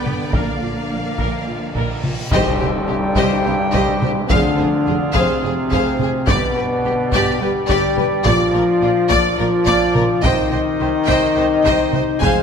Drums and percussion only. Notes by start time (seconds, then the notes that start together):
0.06 taiko mid
0.33 taiko
1.18 taiko
1.75 taiko
2.04 taiko mid
2.31 taiko, tam-tam
3.16 taiko
3.74 taiko
4.02 taiko mid
4.30 taiko
5.14 taiko
5.71 taiko
6.00 taiko mid
6.27 taiko
7.12 taiko
7.69 taiko
7.97 taiko mid
8.26 taiko
9.11 taiko
9.67 taiko
9.95 taiko mid
10.24 taiko
11.08 taiko
11.65 taiko
11.93 taiko mid
12.21 taiko